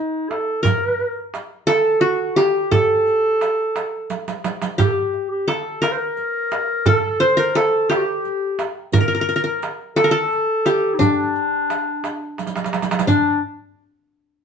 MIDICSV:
0, 0, Header, 1, 5, 480
1, 0, Start_track
1, 0, Tempo, 691244
1, 442, Time_signature, 6, 3, 24, 8
1, 10031, End_track
2, 0, Start_track
2, 0, Title_t, "Clarinet"
2, 0, Program_c, 0, 71
2, 0, Note_on_c, 0, 63, 76
2, 204, Note_on_c, 0, 69, 84
2, 214, Note_off_c, 0, 63, 0
2, 436, Note_off_c, 0, 69, 0
2, 441, Note_on_c, 0, 70, 80
2, 894, Note_off_c, 0, 70, 0
2, 1165, Note_on_c, 0, 69, 83
2, 1393, Note_on_c, 0, 66, 80
2, 1404, Note_off_c, 0, 69, 0
2, 1636, Note_off_c, 0, 66, 0
2, 1640, Note_on_c, 0, 67, 85
2, 1888, Note_on_c, 0, 69, 96
2, 1898, Note_off_c, 0, 67, 0
2, 3086, Note_off_c, 0, 69, 0
2, 3325, Note_on_c, 0, 67, 65
2, 3371, Note_on_c, 0, 69, 57
2, 3381, Note_off_c, 0, 67, 0
2, 3422, Note_on_c, 0, 67, 65
2, 3432, Note_off_c, 0, 69, 0
2, 3677, Note_off_c, 0, 67, 0
2, 3682, Note_on_c, 0, 67, 64
2, 3813, Note_on_c, 0, 69, 69
2, 3824, Note_off_c, 0, 67, 0
2, 4050, Note_on_c, 0, 70, 72
2, 4061, Note_off_c, 0, 69, 0
2, 4111, Note_on_c, 0, 72, 62
2, 4121, Note_off_c, 0, 70, 0
2, 4148, Note_on_c, 0, 70, 78
2, 4159, Note_off_c, 0, 72, 0
2, 4767, Note_on_c, 0, 69, 86
2, 4777, Note_off_c, 0, 70, 0
2, 5012, Note_on_c, 0, 72, 84
2, 5023, Note_off_c, 0, 69, 0
2, 5133, Note_on_c, 0, 70, 75
2, 5143, Note_off_c, 0, 72, 0
2, 5253, Note_on_c, 0, 69, 70
2, 5263, Note_off_c, 0, 70, 0
2, 5484, Note_on_c, 0, 67, 68
2, 5494, Note_off_c, 0, 69, 0
2, 5534, Note_on_c, 0, 66, 65
2, 5544, Note_off_c, 0, 67, 0
2, 5584, Note_on_c, 0, 67, 73
2, 5594, Note_off_c, 0, 66, 0
2, 6024, Note_off_c, 0, 67, 0
2, 6210, Note_on_c, 0, 70, 78
2, 6541, Note_off_c, 0, 70, 0
2, 6561, Note_on_c, 0, 70, 64
2, 6673, Note_off_c, 0, 70, 0
2, 6919, Note_on_c, 0, 69, 90
2, 7011, Note_off_c, 0, 69, 0
2, 7020, Note_on_c, 0, 69, 98
2, 7598, Note_on_c, 0, 63, 54
2, 7608, Note_off_c, 0, 69, 0
2, 7644, Note_on_c, 0, 62, 85
2, 7654, Note_off_c, 0, 63, 0
2, 8841, Note_off_c, 0, 62, 0
2, 9089, Note_on_c, 0, 62, 94
2, 9307, Note_off_c, 0, 62, 0
2, 10031, End_track
3, 0, Start_track
3, 0, Title_t, "Qanun"
3, 0, Program_c, 1, 107
3, 0, Note_on_c, 1, 63, 76
3, 436, Note_on_c, 1, 70, 82
3, 699, Note_off_c, 1, 63, 0
3, 1159, Note_on_c, 1, 69, 97
3, 1200, Note_off_c, 1, 70, 0
3, 1395, Note_on_c, 1, 66, 83
3, 1641, Note_on_c, 1, 67, 84
3, 1683, Note_off_c, 1, 66, 0
3, 1882, Note_off_c, 1, 69, 0
3, 1885, Note_on_c, 1, 69, 84
3, 2513, Note_off_c, 1, 67, 0
3, 3057, Note_off_c, 1, 69, 0
3, 3320, Note_on_c, 1, 67, 77
3, 3802, Note_on_c, 1, 69, 76
3, 4039, Note_on_c, 1, 70, 83
3, 4081, Note_off_c, 1, 69, 0
3, 4192, Note_off_c, 1, 67, 0
3, 4766, Note_on_c, 1, 69, 87
3, 4807, Note_off_c, 1, 70, 0
3, 5000, Note_on_c, 1, 72, 94
3, 5117, Note_on_c, 1, 70, 84
3, 5159, Note_off_c, 1, 69, 0
3, 5245, Note_on_c, 1, 69, 88
3, 5287, Note_off_c, 1, 70, 0
3, 5483, Note_on_c, 1, 67, 80
3, 5733, Note_off_c, 1, 72, 0
3, 6059, Note_off_c, 1, 69, 0
3, 6203, Note_on_c, 1, 70, 82
3, 6251, Note_off_c, 1, 70, 0
3, 6253, Note_on_c, 1, 70, 58
3, 6301, Note_off_c, 1, 70, 0
3, 6304, Note_on_c, 1, 70, 65
3, 6348, Note_off_c, 1, 70, 0
3, 6351, Note_on_c, 1, 70, 58
3, 6354, Note_off_c, 1, 67, 0
3, 6394, Note_off_c, 1, 70, 0
3, 6397, Note_on_c, 1, 70, 71
3, 6446, Note_off_c, 1, 70, 0
3, 6449, Note_on_c, 1, 70, 59
3, 6496, Note_off_c, 1, 70, 0
3, 6498, Note_on_c, 1, 70, 68
3, 6551, Note_off_c, 1, 70, 0
3, 6554, Note_on_c, 1, 70, 58
3, 6919, Note_on_c, 1, 69, 96
3, 6960, Note_off_c, 1, 70, 0
3, 6973, Note_on_c, 1, 70, 78
3, 7014, Note_off_c, 1, 69, 0
3, 7022, Note_on_c, 1, 69, 97
3, 7063, Note_off_c, 1, 70, 0
3, 7402, Note_on_c, 1, 67, 89
3, 7632, Note_on_c, 1, 62, 82
3, 7835, Note_off_c, 1, 69, 0
3, 8273, Note_off_c, 1, 67, 0
3, 8807, Note_off_c, 1, 62, 0
3, 9078, Note_on_c, 1, 62, 76
3, 9301, Note_off_c, 1, 62, 0
3, 10031, End_track
4, 0, Start_track
4, 0, Title_t, "Darbuka"
4, 214, Note_on_c, 9, 63, 55
4, 284, Note_off_c, 9, 63, 0
4, 449, Note_on_c, 9, 64, 83
4, 518, Note_off_c, 9, 64, 0
4, 689, Note_on_c, 9, 62, 30
4, 758, Note_off_c, 9, 62, 0
4, 929, Note_on_c, 9, 63, 61
4, 998, Note_off_c, 9, 63, 0
4, 1170, Note_on_c, 9, 63, 65
4, 1240, Note_off_c, 9, 63, 0
4, 1409, Note_on_c, 9, 62, 26
4, 1479, Note_off_c, 9, 62, 0
4, 1650, Note_on_c, 9, 63, 64
4, 1720, Note_off_c, 9, 63, 0
4, 1888, Note_on_c, 9, 64, 83
4, 1957, Note_off_c, 9, 64, 0
4, 2132, Note_on_c, 9, 62, 27
4, 2202, Note_off_c, 9, 62, 0
4, 2370, Note_on_c, 9, 63, 63
4, 2440, Note_off_c, 9, 63, 0
4, 2609, Note_on_c, 9, 63, 64
4, 2678, Note_off_c, 9, 63, 0
4, 2849, Note_on_c, 9, 63, 53
4, 2918, Note_off_c, 9, 63, 0
4, 2972, Note_on_c, 9, 62, 70
4, 3041, Note_off_c, 9, 62, 0
4, 3086, Note_on_c, 9, 63, 69
4, 3155, Note_off_c, 9, 63, 0
4, 3205, Note_on_c, 9, 62, 77
4, 3275, Note_off_c, 9, 62, 0
4, 3328, Note_on_c, 9, 64, 88
4, 3398, Note_off_c, 9, 64, 0
4, 3566, Note_on_c, 9, 62, 26
4, 3636, Note_off_c, 9, 62, 0
4, 3808, Note_on_c, 9, 63, 64
4, 3877, Note_off_c, 9, 63, 0
4, 4048, Note_on_c, 9, 63, 73
4, 4118, Note_off_c, 9, 63, 0
4, 4286, Note_on_c, 9, 62, 24
4, 4355, Note_off_c, 9, 62, 0
4, 4526, Note_on_c, 9, 63, 71
4, 4596, Note_off_c, 9, 63, 0
4, 4762, Note_on_c, 9, 64, 100
4, 4831, Note_off_c, 9, 64, 0
4, 5010, Note_on_c, 9, 62, 27
4, 5079, Note_off_c, 9, 62, 0
4, 5251, Note_on_c, 9, 63, 68
4, 5320, Note_off_c, 9, 63, 0
4, 5490, Note_on_c, 9, 63, 69
4, 5560, Note_off_c, 9, 63, 0
4, 5728, Note_on_c, 9, 62, 23
4, 5797, Note_off_c, 9, 62, 0
4, 5964, Note_on_c, 9, 63, 69
4, 6033, Note_off_c, 9, 63, 0
4, 6207, Note_on_c, 9, 64, 100
4, 6276, Note_off_c, 9, 64, 0
4, 6446, Note_on_c, 9, 62, 25
4, 6516, Note_off_c, 9, 62, 0
4, 6687, Note_on_c, 9, 63, 62
4, 6757, Note_off_c, 9, 63, 0
4, 6927, Note_on_c, 9, 63, 64
4, 6997, Note_off_c, 9, 63, 0
4, 7163, Note_on_c, 9, 62, 23
4, 7233, Note_off_c, 9, 62, 0
4, 7400, Note_on_c, 9, 63, 56
4, 7469, Note_off_c, 9, 63, 0
4, 7643, Note_on_c, 9, 64, 71
4, 7712, Note_off_c, 9, 64, 0
4, 8125, Note_on_c, 9, 63, 60
4, 8195, Note_off_c, 9, 63, 0
4, 8360, Note_on_c, 9, 63, 62
4, 8429, Note_off_c, 9, 63, 0
4, 8599, Note_on_c, 9, 63, 51
4, 8657, Note_on_c, 9, 62, 56
4, 8668, Note_off_c, 9, 63, 0
4, 8719, Note_on_c, 9, 63, 64
4, 8727, Note_off_c, 9, 62, 0
4, 8780, Note_on_c, 9, 62, 74
4, 8788, Note_off_c, 9, 63, 0
4, 8840, Note_on_c, 9, 63, 70
4, 8850, Note_off_c, 9, 62, 0
4, 8905, Note_on_c, 9, 62, 77
4, 8909, Note_off_c, 9, 63, 0
4, 8966, Note_on_c, 9, 63, 83
4, 8974, Note_off_c, 9, 62, 0
4, 9020, Note_on_c, 9, 62, 83
4, 9036, Note_off_c, 9, 63, 0
4, 9082, Note_on_c, 9, 64, 79
4, 9090, Note_off_c, 9, 62, 0
4, 9152, Note_off_c, 9, 64, 0
4, 10031, End_track
5, 0, Start_track
5, 0, Title_t, "Riq"
5, 457, Note_on_c, 9, 54, 70
5, 527, Note_off_c, 9, 54, 0
5, 935, Note_on_c, 9, 54, 46
5, 1004, Note_off_c, 9, 54, 0
5, 1172, Note_on_c, 9, 54, 46
5, 1241, Note_off_c, 9, 54, 0
5, 1416, Note_on_c, 9, 54, 19
5, 1486, Note_off_c, 9, 54, 0
5, 1651, Note_on_c, 9, 54, 45
5, 1721, Note_off_c, 9, 54, 0
5, 1893, Note_on_c, 9, 54, 47
5, 1963, Note_off_c, 9, 54, 0
5, 2134, Note_on_c, 9, 54, 17
5, 2203, Note_off_c, 9, 54, 0
5, 2373, Note_on_c, 9, 54, 45
5, 2442, Note_off_c, 9, 54, 0
5, 2612, Note_on_c, 9, 54, 48
5, 2682, Note_off_c, 9, 54, 0
5, 2846, Note_on_c, 9, 54, 55
5, 2915, Note_off_c, 9, 54, 0
5, 2970, Note_on_c, 9, 54, 62
5, 3040, Note_off_c, 9, 54, 0
5, 3086, Note_on_c, 9, 54, 78
5, 3156, Note_off_c, 9, 54, 0
5, 3208, Note_on_c, 9, 54, 78
5, 3278, Note_off_c, 9, 54, 0
5, 3324, Note_on_c, 9, 54, 60
5, 3394, Note_off_c, 9, 54, 0
5, 3808, Note_on_c, 9, 54, 44
5, 3878, Note_off_c, 9, 54, 0
5, 4046, Note_on_c, 9, 54, 46
5, 4116, Note_off_c, 9, 54, 0
5, 4283, Note_on_c, 9, 54, 19
5, 4353, Note_off_c, 9, 54, 0
5, 4523, Note_on_c, 9, 54, 42
5, 4592, Note_off_c, 9, 54, 0
5, 4761, Note_on_c, 9, 54, 59
5, 4830, Note_off_c, 9, 54, 0
5, 5248, Note_on_c, 9, 54, 41
5, 5317, Note_off_c, 9, 54, 0
5, 5481, Note_on_c, 9, 54, 41
5, 5550, Note_off_c, 9, 54, 0
5, 5728, Note_on_c, 9, 54, 20
5, 5797, Note_off_c, 9, 54, 0
5, 5966, Note_on_c, 9, 54, 43
5, 6036, Note_off_c, 9, 54, 0
5, 6197, Note_on_c, 9, 54, 63
5, 6267, Note_off_c, 9, 54, 0
5, 6683, Note_on_c, 9, 54, 44
5, 6752, Note_off_c, 9, 54, 0
5, 6928, Note_on_c, 9, 54, 42
5, 6997, Note_off_c, 9, 54, 0
5, 7170, Note_on_c, 9, 54, 19
5, 7239, Note_off_c, 9, 54, 0
5, 7410, Note_on_c, 9, 54, 46
5, 7479, Note_off_c, 9, 54, 0
5, 7648, Note_on_c, 9, 54, 76
5, 7717, Note_off_c, 9, 54, 0
5, 7886, Note_on_c, 9, 54, 18
5, 7955, Note_off_c, 9, 54, 0
5, 8126, Note_on_c, 9, 54, 45
5, 8196, Note_off_c, 9, 54, 0
5, 8366, Note_on_c, 9, 54, 45
5, 8435, Note_off_c, 9, 54, 0
5, 8604, Note_on_c, 9, 54, 52
5, 8661, Note_off_c, 9, 54, 0
5, 8661, Note_on_c, 9, 54, 64
5, 8725, Note_off_c, 9, 54, 0
5, 8725, Note_on_c, 9, 54, 63
5, 8789, Note_off_c, 9, 54, 0
5, 8789, Note_on_c, 9, 54, 69
5, 8847, Note_off_c, 9, 54, 0
5, 8847, Note_on_c, 9, 54, 70
5, 8907, Note_off_c, 9, 54, 0
5, 8907, Note_on_c, 9, 54, 86
5, 8970, Note_off_c, 9, 54, 0
5, 8970, Note_on_c, 9, 54, 79
5, 9023, Note_off_c, 9, 54, 0
5, 9023, Note_on_c, 9, 54, 91
5, 9081, Note_off_c, 9, 54, 0
5, 9081, Note_on_c, 9, 54, 70
5, 9151, Note_off_c, 9, 54, 0
5, 10031, End_track
0, 0, End_of_file